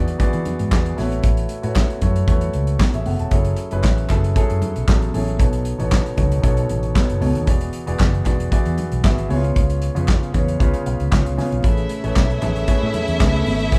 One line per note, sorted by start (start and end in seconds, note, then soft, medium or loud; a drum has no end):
0.00 0.15 E2 medium
0.00 0.19 E3 medium
0.00 0.19 B3 medium
0.00 0.19 F#4 medium
0.00 0.20 G#4 medium
0.00 0.20 D5 medium
0.08 closed hi-hat soft
0.19 0.54 E3 medium
0.19 0.55 B3 medium
0.19 0.55 F#4 medium
0.19 0.55 G#4 medium
0.19 0.55 D5 loud
0.19 kick medium
0.19 closed hi-hat medium
0.19 muted conga medium
0.33 0.44 E3 medium
0.33 closed hi-hat soft
0.45 closed hi-hat medium
0.45 muted conga soft
0.45 low conga medium
0.59 0.70 G#2 medium
0.59 closed hi-hat soft
0.71 0.93 E2 medium
0.71 0.89 E3 medium
0.71 0.89 B3 medium
0.71 0.90 F#4 medium
0.71 0.90 G#4 medium
0.71 0.90 D5 medium
0.71 kick loud
0.71 snare loud
0.71 clap medium
0.71 high conga medium
0.86 closed hi-hat soft
0.97 1.19 A1 loud
0.97 1.49 A3 medium
0.97 1.49 E4 medium
0.97 1.49 F#4 medium
0.97 1.50 B4 medium
0.97 1.50 C#5 medium
0.97 snare soft
0.97 open hi-hat medium
0.97 high conga medium
1.12 closed hi-hat soft
1.23 1.45 A1 medium
1.23 kick loud
1.23 closed hi-hat medium
1.23 muted conga medium
1.37 closed hi-hat soft
1.49 closed hi-hat medium
1.62 1.85 A2 medium
1.62 1.89 A3 medium
1.62 1.89 E4 medium
1.62 1.89 F#4 medium
1.62 1.90 B4 medium
1.62 1.90 C#5 medium
1.62 closed hi-hat medium
1.75 kick loud
1.75 snare loud
1.75 clap medium
1.75 high conga medium
1.90 closed hi-hat soft
2.01 2.23 F#2 medium
2.01 2.19 A3 medium
2.01 2.19 E4 medium
2.01 2.20 F#4 medium
2.01 2.20 B4 medium
2.01 2.20 C#5 medium
2.01 kick medium
2.01 closed hi-hat medium
2.01 muted conga medium
2.01 low conga medium
2.16 closed hi-hat soft
2.28 2.49 E2 medium
2.28 2.63 A3 medium
2.28 2.54 E4 medium
2.28 2.54 F#4 medium
2.28 2.54 B4 medium
2.28 2.55 C#5 medium
2.28 kick loud
2.28 closed hi-hat medium
2.28 muted conga medium
2.41 closed hi-hat soft
2.53 2.75 C#2 medium
2.53 closed hi-hat medium
2.67 closed hi-hat soft
2.79 2.94 E4 soft
2.79 2.93 C#5 medium
2.79 kick loud
2.79 snare loud
2.79 clap medium
2.79 high conga medium
2.94 3.04 A1 medium
2.94 3.06 G#4 medium
2.94 3.06 E5 medium
2.94 closed hi-hat soft
3.06 3.17 F#1 medium
3.06 3.19 A4 medium
3.06 3.19 F#5 medium
3.06 open hi-hat medium
3.06 high conga medium
3.19 3.30 E1 medium
3.19 3.45 C#5 soft
3.19 3.44 A5 medium
3.19 closed hi-hat soft
3.31 3.53 F#1 medium
3.31 3.57 F#3 medium
3.31 3.57 C#4 medium
3.31 3.58 E4 medium
3.31 3.58 G#4 medium
3.31 3.58 A4 medium
3.31 kick loud
3.31 closed hi-hat medium
3.31 muted conga soft
3.45 closed hi-hat soft
3.57 closed hi-hat medium
3.71 3.82 F#1 loud
3.71 3.97 F#3 medium
3.71 3.97 C#4 medium
3.71 3.98 E4 medium
3.71 3.98 G#4 medium
3.71 3.98 B4 medium
3.71 closed hi-hat soft
3.83 4.05 A1 medium
3.83 kick loud
3.83 snare loud
3.83 clap medium
3.83 high conga medium
3.98 closed hi-hat soft
4.09 4.31 F#1 loud
4.09 4.27 F#3 medium
4.09 4.28 C#4 medium
4.09 4.28 E4 medium
4.09 4.28 G#4 medium
4.09 4.28 A4 medium
4.09 kick medium
4.09 clap medium
4.09 closed hi-hat medium
4.09 muted conga soft
4.09 low conga medium
4.24 closed hi-hat soft
4.35 4.71 F#3 medium
4.35 4.71 C#4 medium
4.35 4.71 E4 medium
4.35 4.71 G#4 medium
4.35 4.71 A4 loud
4.35 kick loud
4.35 closed hi-hat medium
4.35 muted conga medium
4.50 4.60 F#2 medium
4.50 closed hi-hat soft
4.62 closed hi-hat medium
4.62 low conga medium
4.76 4.86 B1 medium
4.76 closed hi-hat soft
4.87 5.09 A1 medium
4.87 5.05 F#3 medium
4.87 5.06 C#4 medium
4.87 5.06 E4 medium
4.87 5.06 G#4 medium
4.87 5.06 A4 medium
4.87 kick loud
4.87 snare loud
4.87 clap medium
4.87 high conga medium
5.02 closed hi-hat soft
5.13 5.35 A1 medium
5.13 5.31 F#3 medium
5.13 5.32 C#4 medium
5.13 5.32 E4 medium
5.13 5.32 G#4 medium
5.13 5.32 A4 medium
5.13 open hi-hat medium
5.13 high conga medium
5.28 closed hi-hat soft
5.39 5.72 B1 medium
5.39 5.65 B2 medium
5.39 5.65 B3 medium
5.39 5.66 D#4 medium
5.39 5.66 A4 medium
5.39 5.66 C#5 medium
5.39 kick loud
5.39 closed hi-hat medium
5.39 muted conga soft
5.53 closed hi-hat soft
5.65 closed hi-hat medium
5.78 6.01 A1 loud
5.78 6.05 B2 medium
5.78 6.05 B3 medium
5.78 6.05 D#4 medium
5.78 6.06 A4 medium
5.78 6.06 C#5 medium
5.78 closed hi-hat soft
5.92 kick loud
5.92 snare loud
5.92 clap medium
5.92 high conga medium
6.06 closed hi-hat soft
6.16 6.39 C#2 medium
6.16 6.35 B2 medium
6.16 6.35 B3 medium
6.16 6.35 D#4 medium
6.16 6.35 A4 medium
6.16 6.36 C#5 medium
6.16 kick medium
6.16 closed hi-hat medium
6.16 muted conga soft
6.16 low conga medium
6.32 closed hi-hat medium
6.42 6.65 B1 medium
6.42 6.78 B2 medium
6.42 6.78 B3 medium
6.42 6.78 D#4 medium
6.42 6.79 A4 medium
6.42 6.79 C#5 medium
6.42 kick medium
6.42 closed hi-hat medium
6.42 muted conga medium
6.57 closed hi-hat soft
6.69 6.91 A1 medium
6.69 closed hi-hat medium
6.69 muted conga soft
6.83 closed hi-hat soft
6.94 7.13 B2 medium
6.94 7.13 B3 medium
6.94 7.13 D#4 medium
6.94 7.13 A4 medium
6.94 7.13 C#5 medium
6.94 kick loud
6.94 snare loud
6.94 clap medium
6.94 high conga medium
7.10 7.20 F#1 medium
7.10 closed hi-hat soft
7.20 7.33 C#2 medium
7.20 7.39 B2 medium
7.20 7.39 B3 medium
7.20 7.39 D#4 medium
7.20 7.39 A4 medium
7.20 7.40 C#5 medium
7.20 open hi-hat medium
7.20 high conga medium
7.35 7.46 D#2 medium
7.35 closed hi-hat soft
7.46 7.69 E1 loud
7.46 7.73 E3 medium
7.46 7.73 B3 medium
7.46 7.73 F#4 medium
7.46 7.74 G#4 medium
7.46 7.74 D5 medium
7.46 kick loud
7.46 closed hi-hat medium
7.46 muted conga medium
7.61 closed hi-hat medium
7.73 closed hi-hat medium
7.86 7.98 E1 medium
7.86 8.13 E3 medium
7.86 8.13 B3 medium
7.86 8.13 F#4 medium
7.86 8.14 G#4 medium
7.86 8.14 D5 medium
7.86 closed hi-hat medium
7.99 8.21 F#1 loud
7.99 kick loud
7.99 snare loud
7.99 clap medium
7.99 high conga medium
8.14 closed hi-hat soft
8.25 8.47 E1 medium
8.25 8.43 E3 medium
8.25 8.44 B3 medium
8.25 8.44 F#4 medium
8.25 8.44 G#4 medium
8.25 8.44 D5 medium
8.25 kick medium
8.25 clap medium
8.25 closed hi-hat medium
8.25 muted conga soft
8.25 low conga medium
8.40 closed hi-hat soft
8.51 8.87 E3 medium
8.51 8.87 B3 medium
8.51 8.87 F#4 medium
8.51 8.87 G#4 medium
8.51 8.88 D5 medium
8.51 kick medium
8.51 closed hi-hat medium
8.51 muted conga medium
8.65 8.76 E2 medium
8.65 closed hi-hat soft
8.78 closed hi-hat medium
8.78 low conga medium
8.92 9.02 B1 medium
8.92 closed hi-hat soft
9.03 9.25 G#1 medium
9.03 9.21 E3 medium
9.03 9.22 B3 medium
9.03 9.22 F#4 medium
9.03 9.22 G#4 medium
9.03 9.22 E5 medium
9.03 kick loud
9.03 snare loud
9.03 clap medium
9.03 high conga medium
9.18 closed hi-hat soft
9.29 9.51 C#2 medium
9.29 9.81 C#3 medium
9.29 9.82 B3 medium
9.29 9.36 E4 medium
9.29 9.82 G#4 medium
9.29 9.82 C#5 medium
9.29 open hi-hat medium
9.29 high conga medium
9.36 9.85 F4 medium
9.44 closed hi-hat soft
9.56 9.88 C#2 medium
9.56 kick loud
9.56 closed hi-hat medium
9.56 muted conga medium
9.70 closed hi-hat soft
9.82 closed hi-hat medium
9.95 10.17 F2 loud
9.95 10.21 C#3 medium
9.95 10.21 B3 medium
9.95 10.22 F4 medium
9.95 10.22 G#4 medium
9.95 10.22 C#5 medium
9.95 closed hi-hat medium
10.08 kick loud
10.08 snare loud
10.08 clap medium
10.08 high conga medium
10.23 closed hi-hat soft
10.33 10.55 E2 medium
10.33 10.51 C#3 medium
10.33 10.52 B3 medium
10.33 10.52 F4 medium
10.33 10.52 G#4 medium
10.33 10.58 B4 medium
10.33 10.52 C#5 medium
10.33 kick medium
10.33 closed hi-hat medium
10.33 muted conga soft
10.33 low conga medium
10.48 closed hi-hat medium
10.60 10.71 C#2 loud
10.60 10.95 C#3 medium
10.60 10.95 B3 medium
10.60 10.95 F4 medium
10.60 10.95 G#4 medium
10.60 10.96 C#5 medium
10.60 kick loud
10.60 closed hi-hat medium
10.60 muted conga medium
10.74 closed hi-hat soft
10.86 10.98 B1 medium
10.86 11.10 F5 medium
10.86 closed hi-hat medium
10.86 muted conga soft
11.00 11.10 C#2 medium
11.00 closed hi-hat soft
11.11 11.23 C#2 medium
11.11 11.29 C#3 medium
11.11 11.30 B3 medium
11.11 11.30 F4 medium
11.11 11.30 G#4 medium
11.11 11.30 C#5 medium
11.11 11.36 F5 medium
11.11 kick loud
11.11 snare loud
11.11 clap medium
11.11 high conga medium
11.26 11.36 C#2 medium
11.26 closed hi-hat soft
11.37 11.56 C#3 medium
11.37 11.56 B3 medium
11.37 11.56 F4 medium
11.37 11.56 G#4 medium
11.37 11.56 C#5 medium
11.37 11.62 G#5 medium
11.37 snare soft
11.37 open hi-hat medium
11.37 high conga medium
11.52 11.62 B1 medium
11.52 closed hi-hat soft
11.63 11.85 A1 loud
11.63 11.90 A3 medium
11.63 13.79 A3 medium
11.63 13.79 C#4 medium
11.63 11.90 E4 medium
11.63 13.79 E4 medium
11.63 13.79 G#4 medium
11.63 11.90 G#4 medium
11.63 11.90 B4 medium
11.63 11.91 C#5 medium
11.63 13.79 E5 medium
11.63 kick loud
11.63 closed hi-hat medium
11.63 muted conga medium
11.77 closed hi-hat soft
11.89 closed hi-hat medium
12.03 12.14 A1 medium
12.03 12.30 A3 medium
12.03 12.30 E4 medium
12.03 12.30 G#4 medium
12.03 12.30 B4 medium
12.03 12.30 C#5 medium
12.03 closed hi-hat soft
12.16 12.37 B1 loud
12.16 kick loud
12.16 snare medium
12.16 clap medium
12.16 high conga medium
12.30 closed hi-hat soft
12.42 12.63 A1 medium
12.42 12.60 A3 medium
12.42 12.60 E4 medium
12.42 12.60 G#4 medium
12.42 12.60 B4 medium
12.42 12.60 C#5 medium
12.42 clap medium
12.42 closed hi-hat medium
12.42 muted conga soft
12.42 low conga medium
12.56 closed hi-hat soft
12.67 13.03 A3 medium
12.67 13.03 E4 medium
12.67 13.03 G#4 medium
12.67 13.04 B4 medium
12.67 13.04 C#5 medium
12.67 muted fingered electric bass stroke soft
12.67 kick medium
12.67 closed hi-hat medium
12.67 muted conga medium
12.83 12.92 A2 medium
12.94 closed hi-hat medium
12.94 muted conga soft
12.94 low conga medium
13.08 13.18 E2 medium
13.08 closed hi-hat soft
13.19 13.41 C#2 medium
13.19 13.55 A3 medium
13.19 13.55 E4 medium
13.19 13.55 G#4 medium
13.19 13.56 B4 medium
13.19 13.56 E5 medium
13.19 kick loud
13.19 snare loud
13.19 clap medium
13.19 high conga medium
13.34 closed hi-hat soft
13.34 high conga medium
13.46 13.68 G#1 medium
13.46 open hi-hat medium
13.46 high conga medium
13.60 closed hi-hat medium
13.71 13.79 A1 medium
13.71 13.79 A3 medium
13.71 13.79 E4 medium
13.71 13.79 G#4 medium
13.71 13.79 B4 medium
13.71 13.79 C#5 medium
13.71 kick loud
13.71 closed hi-hat medium
13.71 muted conga soft